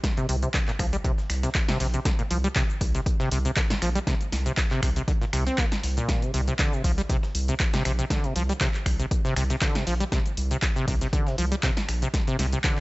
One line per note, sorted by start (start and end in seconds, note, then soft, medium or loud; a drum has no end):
0.04 kick loud
0.04 snare medium
0.04 closed hi-hat medium
0.04 tambourine medium
0.04 cabasa medium
0.17 0.27 C3 loud
0.17 closed hi-hat soft
0.17 cabasa soft
0.29 0.45 C2 loud
0.29 0.36 C3 medium
0.29 open hi-hat loud
0.29 tambourine medium
0.43 0.49 C3 medium
0.43 closed hi-hat medium
0.43 cabasa medium
0.54 0.59 D3 medium
0.54 kick loud
0.54 snare loud
0.54 clap loud
0.54 closed hi-hat medium
0.54 tambourine medium
0.54 cabasa medium
0.68 0.72 A#2 medium
0.68 clap soft
0.68 cabasa soft
0.79 0.95 C2 medium
0.79 0.87 F3 medium
0.79 finger snap medium
0.79 kick medium
0.79 open hi-hat loud
0.79 tambourine medium
0.93 0.97 G3 loud
0.93 closed hi-hat soft
0.93 closed hi-hat medium
0.93 cabasa medium
1.04 1.12 C3 loud
1.04 kick loud
1.04 closed hi-hat medium
1.04 tambourine medium
1.04 cabasa medium
1.18 snare soft
1.18 cabasa soft
1.30 1.46 C2 medium
1.30 finger snap medium
1.30 snare soft
1.30 open hi-hat loud
1.30 tambourine medium
1.43 1.50 C3 medium
1.43 snare medium
1.43 closed hi-hat medium
1.43 cabasa medium
1.55 kick loud
1.55 snare loud
1.55 clap loud
1.55 closed hi-hat medium
1.55 tambourine medium
1.55 cabasa medium
1.69 1.78 C3 loud
1.69 snare medium
1.69 closed hi-hat soft
1.69 cabasa soft
1.80 1.96 A#1 medium
1.80 1.88 C3 medium
1.80 open hi-hat loud
1.80 open hi-hat medium
1.94 2.00 C3 medium
1.94 closed hi-hat medium
1.94 cabasa medium
2.05 2.10 D3 medium
2.05 kick loud
2.05 snare medium
2.05 closed hi-hat medium
2.05 tambourine medium
2.05 cabasa medium
2.19 2.23 A#2 medium
2.19 closed hi-hat soft
2.19 cabasa soft
2.31 2.47 C2 loud
2.31 2.38 F3 medium
2.31 open hi-hat loud
2.31 tambourine medium
2.44 2.48 G3 loud
2.44 closed hi-hat soft
2.44 cabasa medium
2.56 2.63 C3 loud
2.56 kick loud
2.56 snare loud
2.56 clap loud
2.56 closed hi-hat medium
2.56 tambourine medium
2.56 cabasa medium
2.70 cabasa soft
2.81 2.97 C2 medium
2.81 kick medium
2.81 snare soft
2.81 open hi-hat loud
2.81 tambourine medium
2.95 3.01 C3 medium
2.95 snare soft
2.95 closed hi-hat soft
2.95 cabasa medium
3.06 kick loud
3.06 closed hi-hat medium
3.06 tambourine medium
3.06 cabasa soft
3.20 3.29 C3 loud
3.20 snare medium
3.20 cabasa soft
3.31 3.47 C2 medium
3.31 3.39 C3 medium
3.31 open hi-hat loud
3.31 tambourine medium
3.45 3.51 C3 medium
3.45 closed hi-hat medium
3.45 cabasa medium
3.57 3.61 D3 medium
3.57 kick loud
3.57 snare loud
3.57 clap loud
3.57 closed hi-hat medium
3.57 tambourine medium
3.57 cabasa medium
3.70 3.74 A#2 medium
3.70 snare medium
3.70 closed hi-hat soft
3.70 cabasa soft
3.82 3.98 A#1 medium
3.82 3.89 F3 medium
3.82 finger snap medium
3.82 snare soft
3.82 open hi-hat loud
3.82 tambourine medium
3.95 3.99 G3 loud
3.95 closed hi-hat medium
3.95 cabasa medium
4.07 4.15 C3 loud
4.07 kick loud
4.07 snare medium
4.07 closed hi-hat medium
4.07 tambourine medium
4.07 cabasa medium
4.21 closed hi-hat soft
4.21 cabasa soft
4.32 4.48 C2 medium
4.32 snare medium
4.32 open hi-hat loud
4.32 tambourine medium
4.46 4.52 C3 medium
4.46 closed hi-hat soft
4.46 cabasa medium
4.57 kick loud
4.57 snare loud
4.57 clap loud
4.57 closed hi-hat medium
4.57 tambourine medium
4.57 cabasa medium
4.71 4.81 C3 loud
4.71 clap soft
4.71 cabasa soft
4.83 4.99 C2 medium
4.83 4.90 C3 medium
4.83 finger snap medium
4.83 kick medium
4.83 open hi-hat loud
4.83 tambourine medium
4.96 5.03 C3 medium
4.96 closed hi-hat soft
4.96 cabasa medium
5.08 5.12 D3 medium
5.08 kick loud
5.08 closed hi-hat medium
5.08 tambourine medium
5.08 cabasa medium
5.21 5.25 A#2 medium
5.21 snare soft
5.21 cabasa soft
5.33 5.49 C2 medium
5.33 5.44 C3 medium
5.33 finger snap medium
5.33 snare soft
5.33 open hi-hat loud
5.33 tambourine medium
5.46 5.60 C4 medium
5.46 snare medium
5.46 closed hi-hat medium
5.46 cabasa medium
5.58 5.66 A#3 medium
5.58 kick loud
5.58 snare loud
5.58 clap loud
5.58 closed hi-hat medium
5.58 tambourine medium
5.58 cabasa medium
5.72 snare medium
5.72 closed hi-hat soft
5.72 cabasa soft
5.83 6.00 C2 loud
5.83 open hi-hat medium
5.83 open hi-hat loud
5.97 6.24 A#2 medium
5.97 closed hi-hat soft
5.97 cabasa medium
6.09 kick loud
6.09 snare medium
6.09 closed hi-hat medium
6.09 tambourine medium
6.09 cabasa medium
6.22 6.32 C3 loud
6.22 closed hi-hat soft
6.22 cabasa soft
6.34 6.50 C2 loud
6.34 6.41 C3 medium
6.34 open hi-hat loud
6.34 tambourine medium
6.48 6.54 C3 medium
6.48 closed hi-hat soft
6.48 cabasa medium
6.59 6.74 D3 medium
6.59 kick loud
6.59 snare loud
6.59 clap loud
6.59 closed hi-hat medium
6.59 tambourine medium
6.59 cabasa medium
6.73 6.82 C3 medium
6.73 cabasa soft
6.84 7.00 C2 medium
6.84 6.92 F3 medium
6.84 kick medium
6.84 snare soft
6.84 open hi-hat loud
6.84 tambourine medium
6.98 7.02 G3 loud
6.98 snare soft
6.98 closed hi-hat soft
6.98 cabasa medium
7.09 7.17 C3 loud
7.09 kick loud
7.09 closed hi-hat medium
7.09 tambourine medium
7.09 cabasa medium
7.23 snare medium
7.23 cabasa soft
7.35 7.51 C2 medium
7.35 open hi-hat loud
7.35 tambourine medium
7.48 7.55 C3 medium
7.48 closed hi-hat medium
7.48 cabasa medium
7.60 kick loud
7.60 snare loud
7.60 clap loud
7.60 closed hi-hat medium
7.60 tambourine medium
7.60 cabasa medium
7.74 7.83 C3 loud
7.74 snare medium
7.74 closed hi-hat soft
7.74 cabasa soft
7.85 8.01 A#1 medium
7.85 7.93 C3 medium
7.85 finger snap medium
7.85 snare medium
7.85 open hi-hat loud
7.85 tambourine medium
7.99 8.05 C3 medium
7.99 closed hi-hat soft
7.99 cabasa medium
8.10 8.26 D3 medium
8.10 kick loud
8.10 snare medium
8.10 closed hi-hat medium
8.10 tambourine medium
8.10 cabasa medium
8.24 8.34 C3 medium
8.24 closed hi-hat soft
8.24 cabasa soft
8.36 8.52 C2 loud
8.36 8.43 F3 medium
8.36 open hi-hat loud
8.36 tambourine medium
8.49 8.53 G3 loud
8.49 closed hi-hat soft
8.49 cabasa medium
8.61 8.68 C3 loud
8.61 kick loud
8.61 snare loud
8.61 clap loud
8.61 closed hi-hat medium
8.61 tambourine medium
8.61 cabasa medium
8.74 clap soft
8.74 cabasa soft
8.86 9.02 C2 medium
8.86 finger snap medium
8.86 kick medium
8.86 open hi-hat loud
8.86 tambourine medium
9.00 9.06 C3 medium
9.00 closed hi-hat soft
9.00 closed hi-hat medium
9.00 cabasa medium
9.11 kick loud
9.11 closed hi-hat medium
9.11 tambourine medium
9.11 cabasa medium
9.25 9.34 C3 loud
9.25 snare soft
9.25 cabasa soft
9.36 9.52 C2 medium
9.36 9.44 C3 medium
9.36 finger snap medium
9.36 snare soft
9.36 open hi-hat loud
9.36 tambourine medium
9.50 9.56 C3 medium
9.50 snare medium
9.50 closed hi-hat medium
9.50 cabasa medium
9.62 9.77 D3 medium
9.62 kick loud
9.62 snare loud
9.62 clap loud
9.62 closed hi-hat medium
9.62 tambourine medium
9.62 cabasa medium
9.75 9.85 C3 medium
9.75 snare medium
9.75 closed hi-hat soft
9.75 cabasa soft
9.87 10.03 A#1 medium
9.87 9.94 F3 medium
9.87 open hi-hat loud
9.87 open hi-hat medium
10.00 10.04 G3 loud
10.00 closed hi-hat medium
10.00 cabasa medium
10.12 10.20 C3 loud
10.12 kick loud
10.12 snare medium
10.12 closed hi-hat medium
10.12 tambourine medium
10.12 cabasa medium
10.26 closed hi-hat soft
10.26 cabasa soft
10.37 10.53 C2 loud
10.37 open hi-hat loud
10.37 tambourine medium
10.51 10.57 C3 medium
10.51 closed hi-hat medium
10.51 cabasa medium
10.62 kick loud
10.62 snare loud
10.62 clap loud
10.62 closed hi-hat medium
10.62 tambourine medium
10.62 cabasa medium
10.76 10.86 C3 loud
10.76 cabasa soft
10.88 11.04 C2 medium
10.88 10.95 C3 medium
10.88 kick medium
10.88 snare soft
10.88 open hi-hat loud
10.88 tambourine medium
11.01 11.08 C3 medium
11.01 snare soft
11.01 closed hi-hat medium
11.01 cabasa medium
11.13 11.28 D3 medium
11.13 kick loud
11.13 closed hi-hat medium
11.13 tambourine medium
11.13 cabasa medium
11.26 11.36 C3 medium
11.26 snare medium
11.26 cabasa soft
11.38 11.54 C2 medium
11.38 11.46 F3 medium
11.38 open hi-hat loud
11.38 tambourine medium
11.52 11.56 G3 loud
11.52 closed hi-hat medium
11.52 cabasa medium
11.63 11.71 C3 loud
11.63 kick loud
11.63 snare loud
11.63 clap loud
11.63 closed hi-hat medium
11.63 tambourine medium
11.63 cabasa medium
11.77 snare medium
11.77 closed hi-hat soft
11.77 cabasa soft
11.88 12.05 A#1 medium
11.88 finger snap medium
11.88 snare medium
11.88 open hi-hat loud
11.88 tambourine medium
12.02 12.08 C3 medium
12.02 closed hi-hat medium
12.02 cabasa medium
12.14 kick loud
12.14 snare medium
12.14 closed hi-hat medium
12.14 tambourine medium
12.14 cabasa medium
12.27 12.37 C3 loud
12.27 closed hi-hat soft
12.27 cabasa soft
12.39 12.55 C2 loud
12.39 12.46 C3 medium
12.39 snare medium
12.39 open hi-hat loud
12.39 tambourine medium
12.53 12.59 C3 medium
12.53 closed hi-hat medium
12.53 cabasa medium
12.64 12.79 D3 medium
12.64 kick loud
12.64 snare loud
12.64 clap loud
12.64 closed hi-hat medium
12.64 tambourine medium
12.64 cabasa medium